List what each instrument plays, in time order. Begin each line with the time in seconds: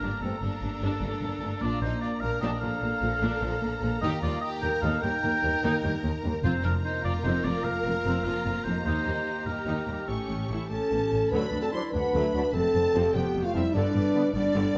Already playing: french horn section A#3 D4, violin section D4 A#5, oboe A#4
0.01 double bass section G1, cello section G2, viola section D4
0.22 double bass section G1, cello section G2, viola section A3, violin section C4, oboe A4
0.41 double bass section G1, cello section G2, viola section A#3, violin section D4, oboe A4
0.62 double bass section G1, cello section G2, viola section A3
0.81 double bass section G1, cello section G2, viola section D4
1.01 double bass section G1, cello section G2, viola section A3
1.21 double bass section G1, cello section G2, viola section A#3
1.41 double bass section G1, cello section G2, viola section A3
1.61 double bass section A#1, cello section A#2, french horn section A#3, viola section A#3 D4, violin section F4 A#5, oboe D5
1.81 double bass section A#1, cello section A#2, viola section F3, violin section D#4, oboe C5
2.01 violin section F4, oboe D5
2.20 double bass section A#1, cello section A#2, viola section F3, violin section A#4, oboe F5
2.41 double bass section A#1, cello section A#2, viola section D4, violin section G4, oboe D#5
2.60 double bass section A#1, cello section A#2, viola section F3, violin section A4, oboe F5
2.82 double bass section A#1, cello section A#2, viola section A#3
3.02 double bass section A#1, cello section A#2, viola section F3
3.21 double bass section A#1, cello section A#2, viola section D4
3.41 double bass section A#1, cello section A#2, viola section F3
3.61 double bass section A#1, cello section A#2, viola section A#3
3.82 double bass section A#1, cello section A#2, viola section F3
4.01 double bass section D#2, cello section D#2, french horn section D#4, viola section D#4, violin section G4, oboe D#5
4.22 cello section D#2, double bass section D#2, viola section G3, violin section F4, oboe D5
4.41 violin section G4, oboe D#5
4.61 double bass section D#2, cello section D#2, viola section G3, violin section A#4, oboe G5
4.82 double bass section D#2, cello section D#2, viola section D#4, violin section A4, oboe F5
5.01 cello section D#2, double bass section D#2, viola section G3, violin section A#4, oboe G5
5.23 cello section D#2, double bass section D#2, viola section A#3
5.43 cello section D#2, double bass section D#2, viola section G3
5.63 cello section D#2, double bass section D#2, viola section D#4
5.83 cello section D#2, double bass section D#2, viola section G3
6.04 cello section D#2, double bass section D#2, viola section A#3
6.24 double bass section D#2, cello section D#2, viola section G3
6.44 double bass section F1, timpani F2, cello section F2, french horn section A#3 F4, viola section C4 A#4, violin section F4 A#5, oboe C5
6.63 double bass section F1, cello section F2, viola section F3, violin section D4, oboe A#4
6.83 violin section D#4, oboe C5
7.03 double bass section F1, cello section F2, viola section F3, violin section F4, oboe D5
7.24 double bass section F1, cello section F2, viola section C4, violin section D#4, oboe C5
7.44 double bass section F1, cello section F2, viola section F3, violin section F4, oboe D5
7.64 double bass section F1, cello section F2, viola section A#3, violin section A#4, oboe F5
7.85 double bass section F1, cello section F2, viola section F3
8.05 double bass section F1, cello section F2, viola section C4
8.24 double bass section F1, cello section F2, viola section F3, violin section F4, oboe A#4
8.45 double bass section F1, cello section F2, viola section A#3
8.64 double bass section F1, cello section F2, viola section F3, violin section D#4, oboe C5
8.85 cello section D#2, double bass section D#2, violin section D#4, viola section D#4 G4, french horn section G4, oboe C5
9.06 cello section D#2, double bass section D#2, viola section G3
9.46 cello section D#2, double bass section D#2, viola section G3, violin section D#4, oboe A#4
9.66 double bass section D#2, cello section D#2, viola section D#4
9.87 double bass section D#2, cello section D#2, viola section G3
10.07 double bass section A1, cello section A2, french horn section C#4, violin section C#4 C#6, viola section C#4, oboe A4
10.29 double bass section A1, cello section A2, viola section A3
10.49 double bass section A1, cello section A2, viola section E4
10.70 double bass section A1, cello section A2, viola section A3, clarinet C#4, french horn section C#4 A4, violin section A5
10.90 double bass section A1, cello section A2, french horn section B3, viola section C#4
11.11 double bass section A1, cello section A2, viola section A3, french horn section C#4
11.32 cello section D2, double bass section D2, viola section D3 F#3, clarinet D4, french horn section B4, flute section D5, violin section B5
11.53 double bass section D2, cello section D2, viola section F#3 D4
11.62 clarinet C4, french horn section A4, violin section A5
11.72 trombone section F#3 D4, clarinet E4, french horn section C5, violin section C6
11.91 double bass section D2, cello section D2, viola section F#3 D4, clarinet D4, french horn section B4, flute section F#5, violin section B5
12.14 double bass section D2, cello section D2, viola section D3 F#3, flute section E5
12.34 double bass section D2, cello section D2, viola section F#3 D4, trombone section F#3 D4, flute section F#5
12.53 double bass section F1, cello section F2, viola section C3 A3, clarinet C4, french horn section A4, flute section D5, violin section A5
12.74 double bass section F1, cello section F2, viola section F3 C4
12.94 double bass section F1, cello section F2, viola section C3 F3, trombone section F3 C4
13.14 double bass section F1, cello section F2, viola section F3 C4, clarinet B3, french horn section G4, flute section C5, violin section G5
13.34 double bass section F1, cello section F2, viola section C3 A3
13.44 clarinet A3, french horn section F4, violin section F5
13.54 double bass section F1, cello section F2, trombone section F3 C4, viola section F3 C4, clarinet G3, french horn section E4, violin section E5
13.74 double bass section G1, cello section G2, viola section D3, clarinet G3, french horn section D4, flute section B4, violin section D5
13.95 double bass section G1, cello section G2, viola section D3 B3
14.15 trombone section D3 B3
14.34 double bass section G1, cello section G2, viola section D3 B3, clarinet G3, french horn section D4, flute section D5, violin section D5
14.55 double bass section G1, cello section G2, viola section D3
14.75 trombone section B3